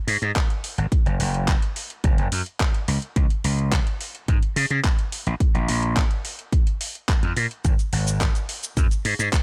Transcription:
0.07 G#2, open hi-hat
0.22 G#2, closed hi-hat
0.36 kick, clap, closed hi-hat
0.50 closed hi-hat
0.64 open hi-hat
0.78 G#1, closed hi-hat
0.92 muted slap bass stroke, kick, closed hi-hat
1.06 F#1, closed hi-hat
1.19 F#1, open hi-hat
1.34 closed hi-hat
1.48 kick, clap, closed hi-hat
1.62 closed hi-hat
1.76 open hi-hat
1.90 closed hi-hat
2.04 F#1, kick, closed hi-hat
2.18 F#1, closed hi-hat
2.32 F#2, open hi-hat
2.46 closed hi-hat
2.60 kick, clap, closed hi-hat
2.74 closed hi-hat
2.88 C#2, open hi-hat
3.02 closed hi-hat
3.16 C#2, kick, closed hi-hat
3.30 closed hi-hat
3.44 C#2, open hi-hat
3.59 closed hi-hat
3.72 kick, clap, closed hi-hat
3.87 closed hi-hat
4.01 open hi-hat
4.15 closed hi-hat
4.28 G#2, kick, closed hi-hat
4.43 closed hi-hat
4.56 C#3, open hi-hat
4.70 C#3, closed hi-hat
4.84 kick, clap, closed hi-hat
4.99 closed hi-hat
5.12 open hi-hat
5.27 A#1, closed hi-hat
5.40 muted slap bass stroke, kick, closed hi-hat
5.54 A#1, closed hi-hat
5.68 A#1, open hi-hat
5.83 closed hi-hat
5.96 kick, clap, closed hi-hat
6.11 closed hi-hat
6.25 open hi-hat
6.39 closed hi-hat
6.52 kick, closed hi-hat
6.67 closed hi-hat
6.81 open hi-hat
6.95 closed hi-hat
7.09 kick, clap, closed hi-hat
7.23 F2, closed hi-hat
7.37 A#2, open hi-hat
7.51 closed hi-hat
7.65 G#1, kick, closed hi-hat, shaker
7.79 closed hi-hat, shaker
7.93 G#1, open hi-hat
8.07 closed hi-hat, shaker
8.21 kick, clap, closed hi-hat, shaker
8.35 closed hi-hat, shaker
8.49 open hi-hat
8.63 closed hi-hat, shaker
8.77 F#2, kick, closed hi-hat, shaker
8.91 closed hi-hat, shaker
9.05 G#2, open hi-hat
9.19 G#2, closed hi-hat, shaker
9.33 kick, clap, closed hi-hat, shaker

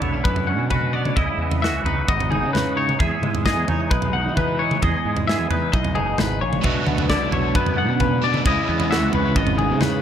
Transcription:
Already playing: D3 E4
0.00 B1 B3 C#5, floor tom
0.13 C#4
0.24 F#2 B3 B4, kick
0.36 floor tom
0.47 F#2 C#4 F#5
0.59 B2
0.70 F#4 B4, kick, floor tom, mid tom
0.93 B3 D5
1.05 C#4, mid tom
1.16 C#2 C#3 E4 D#5, kick, floor tom
1.37 E2 B3
1.51 floor tom
1.62 E3 F#4 E5, snare
1.72 C#2
1.84 C#2 D#4 B4, floor tom
2.08 G#1 B3 D#5, kick
2.20 floor tom
2.30 G#2 D#4 G#4, mid tom
2.42 C#3
2.53 F#4 B4, snare, floor tom, mid tom
2.75 D#4 C#5
2.89 mid tom
2.99 E2 G#4 E5, kick, floor tom
3.22 G#2 G#3, mid tom
3.35 floor tom
3.45 E3 G#4 D#5, kick, snare
3.57 E2
3.68 E2 D#4 C#5, floor tom
3.91 B1 G#3 B4, kick
4.02 floor tom
4.13 B2 D#4 F#5
4.26 E3
4.37 B4, kick, floor tom, mid tom
4.59 D#4 C#5
4.71 mid tom
4.82 E2 G#4 D#5, kick, floor tom
5.05 G#2 G#3
5.17 floor tom
5.27 E3 G#4 E5, snare
5.41 E2
5.50 E2 D#4 B4, floor tom
5.72 B1 G#3 D#5, kick
5.85 floor tom
5.95 F#1 B2 D#4 G#4, mid tom
6.18 G#1 G#2 B4, snare, floor tom, mid tom
6.41 A#1 A#2 C#5
6.53 mid tom
6.62 B1 B2 F#3 B3 F#4 E5, kick, floor tom
6.66 D4
6.87 D2 B3, mid tom
6.98 floor tom
7.09 D3 E4 D5, kick, snare
7.21 B1
7.31 B1 C#5, floor tom
7.55 F#2 B3 B4, kick
7.66 floor tom
7.76 F#2 B3 F#5
7.88 B2
8.00 A#2 B4, kick, floor tom, mid tom
8.22 B2 F#3 B3 D4 D5
8.34 mid tom
8.44 C#2 C#3 G#3 C#4 E4 D#5, kick, floor tom
8.68 E2 B3
8.80 floor tom
8.90 E3 F#4 E5, snare
9.02 C#2
9.13 C#2 B4, floor tom
9.36 G#1 B3 D#5, kick
9.47 floor tom
9.56 G#2 G#4, mid tom
9.70 C#3
9.80 C#3 B4, snare, floor tom, mid tom

